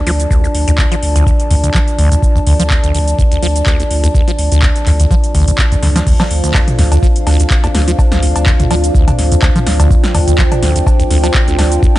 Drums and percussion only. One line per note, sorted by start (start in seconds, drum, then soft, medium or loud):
0.07 open hi-hat loud
0.20 closed hi-hat medium
0.20 shaker medium
0.31 kick loud
0.31 shaker medium
0.44 shaker soft
0.55 open hi-hat loud
0.68 closed hi-hat medium
0.68 shaker medium
0.78 kick loud
0.78 clap loud
0.78 shaker medium
0.92 closed hi-hat medium
0.92 shaker soft
1.03 open hi-hat loud
1.16 closed hi-hat medium
1.16 shaker medium
1.27 kick loud
1.27 shaker medium
1.40 closed hi-hat medium
1.40 shaker soft
1.51 open hi-hat loud
1.64 closed hi-hat medium
1.64 shaker medium
1.74 kick loud
1.74 clap loud
1.74 shaker medium
1.88 closed hi-hat soft
1.88 shaker soft
1.99 open hi-hat loud
2.12 closed hi-hat medium
2.12 shaker medium
2.23 kick loud
2.23 shaker medium
2.36 shaker soft
2.47 open hi-hat loud
2.60 closed hi-hat medium
2.60 shaker medium
2.70 kick medium
2.70 clap loud
2.70 shaker medium
2.84 closed hi-hat medium
2.84 shaker soft
2.95 open hi-hat loud
3.08 closed hi-hat medium
3.08 shaker medium
3.19 kick loud
3.19 shaker medium
3.32 closed hi-hat medium
3.32 shaker soft
3.43 open hi-hat loud
3.56 closed hi-hat medium
3.56 shaker medium
3.66 kick loud
3.66 clap loud
3.66 shaker medium
3.80 closed hi-hat soft
3.80 shaker soft
3.91 open hi-hat loud
4.04 closed hi-hat medium
4.04 shaker medium
4.15 kick loud
4.15 shaker medium
4.28 closed hi-hat soft
4.28 shaker soft
4.39 open hi-hat loud
4.52 closed hi-hat medium
4.52 shaker medium
4.62 kick loud
4.62 clap loud
4.62 shaker medium
4.76 closed hi-hat medium
4.76 shaker soft
4.86 clap soft
4.86 open hi-hat loud
5.00 closed hi-hat medium
5.00 shaker medium
5.11 kick loud
5.11 shaker medium
5.24 closed hi-hat medium
5.24 shaker soft
5.35 open hi-hat loud
5.48 closed hi-hat medium
5.48 shaker medium
5.58 kick loud
5.58 clap loud
5.58 shaker medium
5.72 closed hi-hat soft
5.72 shaker soft
5.83 snare medium
5.83 open hi-hat loud
5.96 snare medium
5.96 closed hi-hat medium
5.96 shaker medium
6.07 kick loud
6.07 crash loud
6.07 shaker medium
6.20 snare medium
6.20 cowbell medium
6.20 shaker soft
6.31 open hi-hat loud
6.44 closed hi-hat medium
6.44 shaker medium
6.54 kick loud
6.54 clap loud
6.54 cowbell medium
6.54 shaker medium
6.68 closed hi-hat medium
6.68 mid tom loud
6.68 shaker soft
6.79 snare medium
6.79 open hi-hat loud
6.92 closed hi-hat medium
6.92 cowbell medium
6.92 shaker medium
7.03 kick loud
7.03 shaker medium
7.16 closed hi-hat medium
7.16 shaker soft
7.27 snare soft
7.27 open hi-hat loud
7.27 cowbell medium
7.40 closed hi-hat medium
7.40 shaker medium
7.50 kick loud
7.50 clap loud
7.50 shaker medium
7.64 closed hi-hat soft
7.64 cowbell medium
7.64 shaker soft
7.75 snare medium
7.75 open hi-hat loud
7.88 closed hi-hat medium
7.88 shaker medium
7.99 kick loud
7.99 cowbell medium
7.99 shaker medium
8.12 snare medium
8.12 shaker soft
8.23 open hi-hat loud
8.36 closed hi-hat medium
8.36 cowbell medium
8.36 shaker medium
8.46 kick loud
8.46 clap loud
8.46 shaker medium
8.60 closed hi-hat medium
8.60 mid tom medium
8.60 shaker soft
8.71 open hi-hat loud
8.71 cowbell medium
8.84 closed hi-hat medium
8.84 shaker medium
8.95 kick loud
8.95 shaker medium
9.08 closed hi-hat medium
9.08 mid tom medium
9.08 cowbell medium
9.08 shaker soft
9.19 snare soft
9.19 open hi-hat loud
9.32 closed hi-hat medium
9.32 shaker medium
9.42 kick loud
9.42 clap loud
9.42 cowbell medium
9.42 shaker medium
9.56 closed hi-hat soft
9.56 mid tom medium
9.56 shaker soft
9.67 snare medium
9.67 open hi-hat loud
9.80 closed hi-hat medium
9.80 cowbell medium
9.80 shaker medium
9.91 kick loud
9.91 shaker medium
10.04 snare medium
10.04 shaker soft
10.15 open hi-hat loud
10.15 cowbell medium
10.28 closed hi-hat medium
10.28 shaker medium
10.38 kick loud
10.38 clap loud
10.38 shaker medium
10.52 closed hi-hat medium
10.52 mid tom medium
10.52 cowbell medium
10.52 shaker soft
10.63 snare medium
10.63 open hi-hat loud
10.76 closed hi-hat medium
10.76 shaker medium
10.87 kick loud
10.87 cowbell medium
10.87 shaker medium
11.00 closed hi-hat medium
11.00 shaker soft
11.11 snare soft
11.11 open hi-hat loud
11.24 closed hi-hat medium
11.24 cowbell medium
11.24 shaker medium
11.34 kick loud
11.34 clap loud
11.34 shaker medium
11.48 closed hi-hat soft
11.48 shaker soft
11.59 snare medium
11.59 open hi-hat loud
11.59 cowbell medium
11.72 closed hi-hat medium
11.72 shaker medium
11.83 kick loud
11.83 shaker medium
11.96 snare medium
11.96 cowbell medium